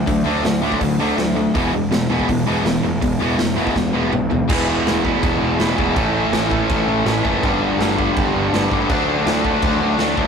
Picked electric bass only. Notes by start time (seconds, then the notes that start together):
0.07 D2
0.25 D2
0.44 D2
0.81 D2
0.99 D2
1.18 D2
1.55 E1
1.73 E1
1.91 E1
2.09 E1
2.29 E1
2.46 E1
2.63 E1
2.83 E1
3.02 E1
3.20 E1
3.38 E1
3.75 E1
3.95 E1
4.12 B1
4.49 E1
4.87 E1
5.23 E1
5.41 E1
5.59 E1
5.78 E1
5.96 A1
6.33 A1
6.69 A1
6.87 A1
7.06 A1
7.25 F#1
7.43 G1
7.79 G1
8.17 G1
8.35 G1
8.53 G1
8.71 G1
8.90 D2
9.26 D2
9.63 D2
9.80 D2
9.98 D2
10.18 D2